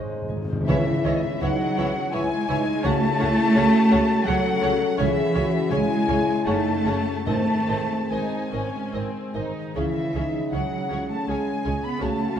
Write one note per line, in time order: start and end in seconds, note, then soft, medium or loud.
0.00 0.71 G#2 medium
0.00 0.34 G#3 medium
0.00 0.28 G#4 soft
0.00 0.35 C5 medium
0.00 0.71 D#5 soft
0.00 2.88 G#5 soft
0.06 0.12 G#2 soft
0.06 0.71 D#4 soft
0.13 0.20 G#2 soft
0.22 0.28 G#2 soft
0.29 0.37 G#1 medium
0.29 0.37 G#2 medium
0.29 0.36 G#2 medium
0.29 1.41 G#4 soft
0.37 0.44 G#2 medium
0.45 0.51 G#2 medium
0.49 0.59 G#2 medium
0.49 0.71 C5 soft
0.61 0.67 G#2 medium
0.66 0.76 C#2 medium
0.66 2.83 C#3 medium
0.66 1.75 C#3 medium
0.66 1.02 E3 medium
0.66 0.84 E3 medium
0.66 0.95 E3 medium
0.66 0.95 C#4 medium
0.66 1.38 E4 medium
0.66 0.76 E4 medium
0.66 0.76 C#5 medium
0.66 0.84 C#5 medium
0.66 1.02 E5 medium
0.66 1.07 E5 medium
0.66 0.76 E5 medium
1.04 1.14 C#2 medium
1.04 1.23 D#3 medium
1.04 1.22 E3 medium
1.04 1.13 E4 medium
1.04 2.13 E4 medium
1.04 1.21 C#5 medium
1.04 1.13 C#5 medium
1.04 1.23 D#5 medium
1.04 1.26 D#5 medium
1.04 1.14 E5 medium
1.22 1.42 E3 medium
1.22 1.41 E5 medium
1.22 1.42 E5 medium
1.41 1.50 C#2 medium
1.41 1.58 E3 medium
1.41 2.14 F#3 medium
1.41 1.77 D#4 medium
1.41 1.50 E4 medium
1.41 2.87 G#4 medium
1.41 1.50 C#5 medium
1.41 1.58 C#5 medium
1.41 1.50 E5 medium
1.41 2.13 F#5 medium
1.41 2.15 F#5 medium
1.78 1.87 C#2 medium
1.78 1.94 E3 medium
1.78 2.14 C#4 medium
1.78 1.86 E4 medium
1.78 1.86 C#5 medium
1.78 1.94 C#5 medium
1.78 3.91 C#5 medium
1.78 1.87 E5 medium
2.13 2.22 C#2 medium
2.13 2.30 E3 medium
2.13 2.83 G#3 loud
2.13 2.21 E4 medium
2.13 2.49 E4 medium
2.13 2.88 E4 medium
2.13 2.21 C#5 medium
2.13 2.30 C#5 medium
2.13 2.23 E5 medium
2.13 2.83 G#5 medium
2.13 2.84 G#5 medium
2.48 2.57 C#2 medium
2.48 2.65 E3 medium
2.48 2.88 G#3 soft
2.48 2.84 D#4 medium
2.48 2.57 E4 medium
2.48 2.64 C#5 medium
2.48 2.56 C#5 medium
2.48 2.58 E5 medium
2.83 2.93 C#2 medium
2.83 3.00 C#3 medium
2.83 3.88 C#3 medium
2.83 4.98 C#3 medium
2.83 3.10 F#3 medium
2.83 4.28 A3 loud
2.83 2.91 C#4 medium
2.83 3.19 C#4 medium
2.83 3.10 C#4 medium
2.83 2.91 C#5 medium
2.83 2.99 C#5 medium
2.83 2.93 F#5 medium
2.83 4.28 A5 loud
2.83 4.29 A5 loud
3.19 3.29 C#2 medium
3.19 3.36 C#3 medium
3.19 3.27 C#4 medium
3.19 4.27 C#4 medium
3.19 3.56 E4 medium
3.19 3.27 C#5 medium
3.19 3.37 C#5 medium
3.19 3.28 F#5 medium
3.55 3.64 C#2 medium
3.55 3.71 C#3 medium
3.55 3.63 C#4 medium
3.55 4.28 F#4 medium
3.55 5.03 F#4 medium
3.55 3.63 C#5 medium
3.55 3.72 C#5 medium
3.55 3.65 F#5 medium
3.91 4.01 C#2 medium
3.91 4.07 C#3 medium
3.91 3.99 C#4 medium
3.91 3.99 C#5 medium
3.91 4.08 C#5 medium
3.91 6.08 C#5 medium
3.91 3.99 F#5 medium
4.26 4.36 C#2 medium
4.26 4.43 C#3 medium
4.26 4.99 F#3 loud
4.26 4.36 C#4 medium
4.26 5.35 C#4 medium
4.26 5.00 A4 medium
4.26 4.44 C#5 medium
4.26 4.36 C#5 medium
4.26 4.34 F#5 medium
4.26 4.99 F#5 medium
4.26 4.98 F#5 medium
4.62 4.71 C#2 medium
4.62 4.80 C#3 medium
4.62 5.03 A3 medium
4.62 4.70 C#4 medium
4.62 4.70 C#5 medium
4.62 4.79 C#5 medium
4.62 4.71 F#5 medium
4.98 5.07 C#2 medium
4.98 5.25 C#3 medium
4.98 6.50 C#3 medium
4.98 5.16 C#3 medium
4.98 5.70 E3 loud
4.98 5.06 C#4 medium
4.98 5.25 C#4 medium
4.98 5.35 G#4 medium
4.98 5.06 C#5 medium
4.98 5.16 C#5 medium
4.98 5.74 E5 medium
4.98 5.72 E5 medium
4.98 5.07 G#5 medium
5.34 5.44 C#2 medium
5.34 5.52 C#3 medium
5.34 5.42 C#4 medium
5.34 7.31 C#4 medium
5.34 5.72 F#4 medium
5.34 5.42 C#5 medium
5.34 5.53 C#5 medium
5.34 5.45 G#5 medium
5.71 5.79 C#2 medium
5.71 5.88 C#3 medium
5.71 6.47 G#3 loud
5.71 5.79 C#4 medium
5.71 6.47 E4 medium
5.71 6.50 G#4 medium
5.71 5.79 C#5 medium
5.71 5.88 C#5 medium
5.71 6.46 G#5 medium
5.71 5.79 G#5 medium
5.71 6.48 G#5 medium
6.08 6.16 C#2 medium
6.08 6.24 C#3 medium
6.08 6.16 C#4 medium
6.08 6.16 C#5 medium
6.08 6.85 C#5 medium
6.08 6.26 C#5 medium
6.08 6.16 G#5 medium
6.46 6.54 F#1 medium
6.46 7.31 F#2 medium
6.46 6.63 C#3 medium
6.46 6.75 C#3 medium
6.46 7.26 A3 medium
6.46 6.75 C#4 medium
6.46 6.55 C#4 medium
6.46 6.87 D#4 medium
6.46 6.55 C#5 medium
6.46 6.63 C#5 medium
6.46 6.54 F#5 medium
6.46 7.25 A5 medium
6.46 6.98 A5 medium
6.86 6.94 F#1 medium
6.86 7.02 C#3 medium
6.86 6.94 C#4 medium
6.86 7.16 C#4 medium
6.86 7.30 F#4 soft
6.86 6.94 C#5 soft
6.86 7.30 C#5 soft
6.86 7.04 C#5 soft
6.86 6.94 F#5 medium
7.26 7.35 G#1 medium
7.26 8.49 G#2 medium
7.26 9.78 G#2 medium
7.26 7.43 D#3 medium
7.26 7.59 D#3 medium
7.26 8.10 A3 medium
7.26 7.35 C4 medium
7.26 7.58 C4 medium
7.26 9.32 C4 medium
7.26 7.36 G#4 medium
7.26 7.45 C5 medium
7.26 7.34 D#5 medium
7.26 8.12 A5 medium
7.26 8.10 A5 medium
7.69 7.77 G#1 medium
7.69 7.85 D#3 soft
7.69 8.92 G#3 soft
7.69 7.77 C4 medium
7.69 7.77 G#4 soft
7.69 7.87 C5 soft
7.69 7.77 D#5 soft
8.10 8.20 G#1 soft
8.10 8.26 D#3 medium
8.10 9.35 G#3 medium
8.10 9.79 D#4 soft
8.10 8.50 D#4 medium
8.10 8.28 C5 soft
8.10 8.19 D#5 soft
8.10 9.35 G#5 medium
8.10 9.36 G#5 medium
8.53 8.62 G#1 medium
8.53 8.69 D#3 soft
8.53 8.93 C#4 medium
8.53 9.78 C5 soft
8.53 8.71 C5 soft
8.53 8.61 D#5 soft
8.93 9.02 G#1 medium
8.93 9.10 D#3 soft
8.93 10.12 G#3 soft
8.93 9.35 C4 medium
8.93 9.11 C5 soft
8.93 9.02 D#5 soft
9.34 9.43 G#1 medium
9.34 9.78 D#3 soft
9.34 9.51 D#3 soft
9.34 9.75 D#4 medium
9.34 9.52 C5 soft
9.34 9.43 D#5 soft
9.75 9.84 C#2 medium
9.75 12.00 C#3 medium
9.75 11.25 C#3 medium
9.75 10.49 E3 medium
9.75 10.04 E3 medium
9.75 9.84 C#4 medium
9.75 10.04 C#4 medium
9.75 10.12 E4 medium
9.75 9.84 G#4 medium
9.75 11.25 G#4 medium
9.75 9.84 C#5 medium
9.75 10.49 E5 medium
9.75 10.55 E5 medium
10.13 10.23 C#2 medium
10.13 11.27 G#3 soft
10.13 10.23 C#4 soft
10.13 10.54 D#4 medium
10.13 10.23 G#4 soft
10.13 10.24 C#5 soft
10.52 10.61 C#2 medium
10.52 11.10 F#3 medium
10.52 10.60 C#4 soft
10.52 12.03 C#4 medium
10.52 12.04 E4 soft
10.52 10.60 G#4 soft
10.52 10.63 C#5 soft
10.52 11.12 F#5 medium
10.52 11.10 F#5 medium
10.90 10.99 C#2 medium
10.90 10.98 C#4 medium
10.90 10.98 G#4 soft
10.90 12.40 C#5 soft
10.90 11.01 C#5 medium
11.10 11.30 A3 medium
11.10 11.29 A5 medium
11.28 11.37 C#2 medium
11.28 12.00 C#3 medium
11.28 12.04 G#3 soft
11.28 11.84 G#3 medium
11.28 11.37 C#4 soft
11.28 11.36 G#4 medium
11.28 12.04 G#4 medium
11.28 11.39 C#5 soft
11.28 11.86 G#5 medium
11.28 11.84 G#5 medium
11.65 11.74 C#2 medium
11.65 12.35 C#4 soft
11.65 11.74 C#4 soft
11.65 11.73 G#4 soft
11.65 11.73 C#5 soft
11.84 12.02 B3 medium
11.84 12.02 B5 medium
11.84 12.04 B5 medium
12.00 12.09 C#2 medium
12.00 12.40 C#3 medium
12.00 12.27 F#3 medium
12.00 12.40 A3 medium
12.00 12.08 C#4 medium
12.00 12.27 C#4 medium
12.00 12.08 F#4 medium
12.00 12.37 F#4 medium
12.00 12.40 F#4 medium
12.00 12.10 C#5 medium
12.00 12.40 A5 medium
12.36 12.40 C#4 soft
12.36 12.40 F#4 soft